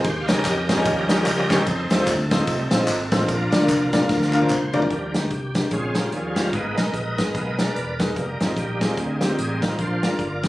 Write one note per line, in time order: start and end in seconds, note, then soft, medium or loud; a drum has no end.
0.03 0.25 D#2 loud
0.03 0.65 D#3 medium
0.03 0.26 G4 medium
0.03 0.18 C5 loud
0.03 kick loud
0.03 ride medium
0.03 tambourine medium
0.20 0.29 F5 medium
0.26 0.43 C#2 medium
0.26 0.34 C#4 medium
0.26 0.34 D#4 medium
0.26 1.05 G4 medium
0.26 0.34 G4 medium
0.26 1.05 A#4 medium
0.26 0.34 A#4 medium
0.26 0.34 C#5 medium
0.26 1.07 D#5 loud
0.26 snare loud
0.26 ride medium
0.26 tambourine medium
0.36 0.49 C#4 medium
0.36 0.50 D#4 medium
0.36 0.50 G4 medium
0.36 0.50 A#4 medium
0.36 0.50 C#5 medium
0.45 0.79 F2 loud
0.45 kick loud
0.45 clap loud
0.45 ride medium
0.45 tambourine loud
0.68 1.62 F3 medium
0.68 1.62 G3 medium
0.68 0.75 C#4 medium
0.68 1.62 C#4 medium
0.68 0.75 D#4 medium
0.68 0.75 G4 medium
0.68 0.75 A#4 medium
0.68 0.75 D#5 medium
0.68 kick loud
0.68 snare loud
0.68 ride medium
0.68 tambourine medium
0.77 0.90 C#4 medium
0.77 0.90 D#4 medium
0.77 0.90 G4 medium
0.77 0.90 A#4 medium
0.77 0.91 D#5 medium
0.85 1.20 D#2 medium
0.85 kick loud
0.85 ride medium
0.85 tambourine medium
1.08 1.15 C#4 medium
1.08 1.15 D#4 medium
1.08 1.62 G4 medium
1.08 1.15 G4 medium
1.08 1.62 A#4 medium
1.08 1.16 A#4 medium
1.08 1.50 D#5 loud
1.08 1.16 D#5 medium
1.08 snare loud
1.08 ride medium
1.08 tambourine medium
1.18 1.31 C#4 medium
1.18 1.31 D#4 medium
1.18 1.31 G4 medium
1.18 1.31 A#4 medium
1.18 1.31 D#5 medium
1.26 1.61 C#2 medium
1.26 clap loud
1.26 ride medium
1.26 tambourine medium
1.50 1.62 C#4 medium
1.50 1.62 D#4 medium
1.50 1.90 D#4 medium
1.50 1.62 G4 medium
1.50 2.05 A4 medium
1.50 1.62 A#4 medium
1.50 2.09 C5 loud
1.50 1.62 C#5 medium
1.50 kick medium
1.50 snare loud
1.50 ride soft
1.50 tambourine medium
1.66 1.87 F2 loud
1.66 kick loud
1.66 ride medium
1.66 tambourine medium
1.90 2.05 D#2 medium
1.90 2.15 G3 medium
1.90 2.16 A3 medium
1.90 1.96 C4 medium
1.90 1.96 D#4 medium
1.90 2.16 D#4 medium
1.90 1.96 F4 medium
1.90 1.96 A4 medium
1.90 1.96 C5 medium
1.90 snare loud
1.90 ride medium
1.90 tambourine medium
1.99 2.12 C4 medium
1.99 2.12 D#4 medium
1.99 2.12 F4 medium
1.99 2.12 A4 medium
1.99 2.12 C5 medium
2.07 2.41 D2 medium
2.07 2.29 A4 medium
2.07 kick loud
2.07 clap loud
2.07 ride medium
2.07 tambourine loud
2.30 2.37 C4 medium
2.30 3.08 C4 medium
2.30 2.37 D#4 medium
2.30 2.48 D#4 medium
2.30 2.37 F4 medium
2.30 3.14 A4 medium
2.30 2.37 A4 medium
2.30 2.37 C5 medium
2.30 kick loud
2.30 snare loud
2.30 ride medium
2.30 tambourine medium
2.39 2.52 C4 medium
2.39 2.52 D#4 medium
2.39 2.52 F4 medium
2.39 2.52 A4 medium
2.39 2.52 D#5 medium
2.47 2.68 C2 medium
2.47 2.69 G3 medium
2.47 2.69 A3 soft
2.47 2.70 D#4 soft
2.47 kick loud
2.47 ride medium
2.47 tambourine medium
2.71 2.86 A#1 loud
2.71 2.77 C4 medium
2.71 2.77 D#4 medium
2.71 2.77 F4 medium
2.71 2.77 A4 medium
2.71 2.77 C5 medium
2.71 snare loud
2.71 ride medium
2.71 tambourine medium
2.79 2.92 C4 medium
2.79 2.93 D#4 medium
2.79 2.93 F4 medium
2.79 2.93 A4 medium
2.79 2.93 D#5 medium
2.88 3.08 G#1 loud
2.88 clap loud
2.88 ride medium
2.88 tambourine loud
3.11 3.26 A1 loud
3.11 3.23 C4 medium
3.11 3.29 D4 medium
3.11 3.23 D#4 medium
3.11 3.23 F4 medium
3.11 4.46 F4 medium
3.11 3.23 A4 medium
3.11 4.46 A#4 medium
3.11 3.23 C5 medium
3.11 kick medium
3.11 snare loud
3.11 ride soft
3.11 tambourine medium
3.29 3.49 A#1 loud
3.29 3.89 A#2 medium
3.29 3.90 F3 medium
3.29 3.90 A#3 medium
3.29 3.91 D4 medium
3.29 kick loud
3.29 ride medium
3.29 tambourine medium
3.52 3.67 D2 medium
3.52 3.58 A#3 medium
3.52 3.58 D4 medium
3.52 3.58 F4 medium
3.52 3.58 A#4 medium
3.52 3.58 D5 medium
3.52 snare loud
3.52 ride medium
3.52 tambourine medium
3.61 3.74 A#3 medium
3.61 3.74 D4 medium
3.61 3.74 F4 medium
3.61 3.74 A#4 medium
3.61 3.74 D5 medium
3.68 4.03 C2 medium
3.68 kick medium
3.68 clap loud
3.68 ride medium
3.68 tambourine loud
3.93 3.99 A#3 medium
3.93 3.99 D4 medium
3.93 3.99 F4 medium
3.93 3.99 A#4 medium
3.93 3.99 D5 medium
3.93 kick loud
3.93 snare loud
3.93 ride medium
3.93 tambourine medium
4.02 4.14 A#3 medium
4.02 4.14 D4 medium
4.02 4.14 F4 medium
4.02 4.15 A#4 medium
4.02 4.15 F5 medium
4.09 4.44 D2 loud
4.09 4.32 F3 soft
4.09 4.31 A#3 soft
4.09 4.32 D4 soft
4.09 kick loud
4.09 snare medium
4.09 tambourine medium
4.22 snare medium
4.33 4.39 A#3 medium
4.33 4.39 D4 medium
4.33 4.39 F4 medium
4.33 4.39 A#4 medium
4.33 4.51 D5 loud
4.33 4.39 F5 medium
4.33 clap medium
4.33 tambourine medium
4.42 4.55 A#3 medium
4.42 4.55 D4 medium
4.42 4.55 F4 medium
4.42 4.55 A#4 medium
4.42 4.55 C5 medium
4.42 high tom medium
4.50 4.71 C#2 loud
4.50 4.75 C5 loud
4.50 clap loud
4.50 mid tom loud
4.50 tambourine medium
4.73 4.88 D2 medium
4.73 4.85 A#3 medium
4.73 4.85 D4 medium
4.73 4.90 D4 medium
4.73 4.85 F4 medium
4.73 5.33 G4 medium
4.73 4.85 A#4 medium
4.73 5.13 A#4 loud
4.73 4.85 D5 loud
4.73 floor tom loud
4.73 tambourine medium
4.82 floor tom loud
4.90 5.11 D#2 medium
4.90 5.51 D#3 medium
4.90 5.19 F3 medium
4.90 5.20 G3 soft
4.90 5.20 D4 medium
4.90 kick medium
4.90 closed hi-hat medium
5.14 5.29 D2 medium
5.14 5.26 D4 medium
5.14 5.26 D#4 medium
5.14 5.26 G4 medium
5.14 5.26 A#4 medium
5.14 snare loud
5.14 closed hi-hat medium
5.28 5.65 C2 medium
5.28 5.32 F#4 medium
5.28 kick medium
5.28 closed hi-hat medium
5.34 5.55 G4 medium
5.55 5.66 D4 medium
5.55 5.67 D#4 soft
5.55 5.67 G4 medium
5.55 5.72 G4 medium
5.55 5.67 A#4 medium
5.55 kick medium
5.55 snare medium
5.55 closed hi-hat medium
5.71 6.06 A#1 medium
5.71 6.09 A#2 medium
5.71 6.01 C#3 soft
5.71 6.01 G#3 soft
5.71 6.02 C4 medium
5.71 6.10 C#4 medium
5.71 6.10 F4 medium
5.71 5.97 G#4 medium
5.71 kick medium
5.71 closed hi-hat medium
5.95 6.07 C#4 medium
5.95 6.07 F4 medium
5.95 6.12 G4 medium
5.95 6.07 G#4 medium
5.95 6.07 A#4 medium
5.95 snare medium
5.95 closed hi-hat medium
6.11 6.47 D#2 medium
6.11 6.50 D#3 medium
6.11 6.50 F3 soft
6.11 6.50 G3 soft
6.11 6.51 C#4 medium
6.11 6.50 F4 medium
6.11 6.37 G#4 medium
6.11 closed hi-hat medium
6.36 6.48 C#4 medium
6.36 6.48 D#4 medium
6.36 6.48 F4 medium
6.36 6.48 G4 medium
6.36 6.52 A#4 medium
6.36 kick medium
6.36 snare loud
6.36 closed hi-hat soft
6.52 6.74 G#1 medium
6.52 7.14 G#2 medium
6.52 6.82 G#3 medium
6.52 6.82 A#3 soft
6.52 6.83 B3 medium
6.52 7.31 D#4 medium
6.52 6.77 B4 medium
6.52 kick medium
6.52 closed hi-hat medium
6.77 6.92 B1 medium
6.77 6.89 B3 medium
6.77 6.89 D#4 medium
6.77 6.89 G#4 medium
6.77 6.89 A#4 medium
6.77 7.55 A#4 medium
6.77 7.55 B4 medium
6.77 7.55 D#5 medium
6.77 snare loud
6.77 closed hi-hat medium
6.94 7.14 A#1 medium
6.94 kick medium
6.94 closed hi-hat medium
7.18 7.32 G#1 medium
7.18 7.30 B3 medium
7.18 7.30 D#4 medium
7.18 7.30 G#4 medium
7.18 7.30 B4 medium
7.18 kick medium
7.18 snare loud
7.18 closed hi-hat medium
7.34 7.69 B1 medium
7.34 7.56 G#3 soft
7.34 7.56 A#3 soft
7.34 7.56 B3 soft
7.34 kick loud
7.34 closed hi-hat medium
7.59 7.70 B3 medium
7.59 7.70 D#4 medium
7.59 7.70 G#4 medium
7.59 7.71 A#4 medium
7.59 7.99 A#4 medium
7.59 8.12 B4 medium
7.59 8.01 D5 loud
7.59 snare loud
7.59 closed hi-hat medium
7.76 8.10 E1 medium
7.76 closed hi-hat medium
7.99 8.11 B3 medium
7.99 8.11 D#4 medium
7.99 8.17 D#4 medium
7.99 8.11 G#4 medium
7.99 8.38 A#4 medium
7.99 8.11 B4 medium
7.99 kick medium
7.99 snare loud
7.99 closed hi-hat medium
8.16 8.37 F1 medium
8.16 9.75 G3 soft
8.16 9.75 A#3 soft
8.16 8.98 D#4 medium
8.16 kick medium
8.16 closed hi-hat medium
8.40 8.54 G#1 medium
8.40 8.52 C4 medium
8.40 8.52 D#4 medium
8.40 8.52 F4 medium
8.40 8.52 A#4 medium
8.40 snare loud
8.40 closed hi-hat medium
8.57 8.91 A#1 medium
8.57 8.81 G4 medium
8.57 kick medium
8.57 closed hi-hat medium
8.81 8.92 C4 medium
8.81 8.92 D#4 medium
8.81 8.92 F4 medium
8.81 8.97 G4 medium
8.81 8.93 G#4 medium
8.81 kick medium
8.81 snare loud
8.81 closed hi-hat medium
8.97 9.32 D2 medium
8.97 9.75 C4 medium
8.97 9.76 D#4 medium
8.97 9.23 G#4 medium
8.97 kick loud
8.97 closed hi-hat medium
9.21 9.33 C4 medium
9.21 9.33 D#4 medium
9.21 9.33 F4 medium
9.21 9.33 G4 medium
9.21 9.39 G4 medium
9.21 snare loud
9.21 closed hi-hat medium
9.38 9.73 A1 medium
9.38 9.61 G#4 medium
9.38 closed hi-hat medium
9.62 9.74 C4 medium
9.62 9.74 D#4 medium
9.62 9.74 F4 medium
9.62 9.74 A#4 medium
9.62 9.80 A#4 medium
9.62 kick medium
9.62 snare loud
9.62 closed hi-hat medium
9.79 9.99 A#1 medium
9.79 10.39 A#2 medium
9.79 10.08 F3 medium
9.79 10.09 A#3 soft
9.79 10.09 D4 medium
9.79 10.03 F4 medium
9.79 10.04 C5 medium
9.79 kick medium
9.79 closed hi-hat medium
10.03 10.17 G#1 medium
10.03 10.14 A#3 medium
10.03 10.14 D4 medium
10.03 10.15 F4 medium
10.03 10.48 F4 medium
10.03 10.15 A#4 medium
10.03 10.48 A#4 medium
10.03 10.48 D5 loud
10.03 snare loud
10.03 closed hi-hat medium
10.19 10.48 G1 medium
10.19 kick medium
10.19 closed hi-hat medium
10.43 10.48 A#3 medium
10.43 10.48 D4 medium
10.43 10.48 F4 soft
10.43 10.48 G#4 medium
10.43 kick medium
10.43 snare medium
10.43 closed hi-hat medium